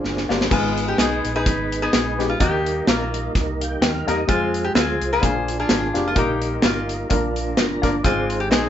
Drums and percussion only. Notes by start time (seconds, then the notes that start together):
0.05 snare
0.17 snare
0.30 snare
0.41 snare
0.51 kick, crash
0.78 closed hi-hat
0.98 snare, closed hi-hat
1.25 closed hi-hat
1.46 kick, snare, closed hi-hat
1.72 closed hi-hat
1.93 snare, closed hi-hat
2.20 snare, closed hi-hat
2.40 kick, closed hi-hat
2.66 closed hi-hat
2.87 snare, closed hi-hat
3.14 closed hi-hat
3.35 kick, snare, closed hi-hat
3.61 closed hi-hat
3.82 snare, closed hi-hat
4.08 snare, closed hi-hat
4.29 kick, closed hi-hat
4.54 closed hi-hat
4.75 snare, closed hi-hat
5.02 closed hi-hat
5.22 kick, snare, closed hi-hat
5.48 closed hi-hat
5.69 snare, closed hi-hat
5.95 snare, closed hi-hat
6.16 kick, closed hi-hat
6.42 closed hi-hat
6.62 snare, closed hi-hat
6.89 closed hi-hat
7.10 kick, closed hi-hat
7.36 closed hi-hat
7.57 snare, closed hi-hat
7.83 kick, snare, closed hi-hat
8.04 kick, closed hi-hat
8.30 closed hi-hat
8.52 snare, closed hi-hat